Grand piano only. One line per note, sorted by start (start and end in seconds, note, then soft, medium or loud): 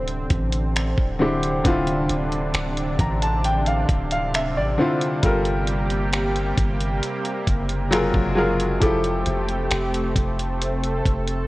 0.00 1.19 D3 medium
0.00 1.20 C4 medium
0.00 1.21 E4 medium
0.00 1.67 F4 medium
1.19 1.62 D3 medium
1.19 1.62 C4 medium
1.19 1.63 E4 medium
1.19 1.63 G4 medium
1.64 3.33 D3 medium
1.64 3.33 C4 medium
1.64 3.34 E4 medium
1.64 3.34 F4 medium
3.00 3.21 A#5 medium
3.22 3.43 A5 medium
3.45 3.65 G5 medium
3.67 4.09 F5 medium
4.12 4.33 F5 medium
4.35 4.55 E5 medium
4.57 5.20 D5 medium
4.78 5.20 D3 medium
4.78 5.21 C4 medium
4.78 5.21 E4 medium
4.78 5.22 F4 medium
5.22 6.91 G3 medium
5.22 6.92 F4 medium
5.22 6.92 A4 medium
5.22 6.93 A#4 medium
7.91 8.33 F#3 medium
7.91 8.34 F4 medium
7.91 8.34 G#4 medium
7.91 8.35 A#4 loud
8.35 8.78 F#3 medium
8.35 8.79 F4 medium
8.35 8.79 G#4 medium
8.35 8.80 A#4 medium
8.80 10.49 F3 medium
8.80 10.49 E4 medium
8.80 10.50 G4 medium
8.80 10.50 A4 medium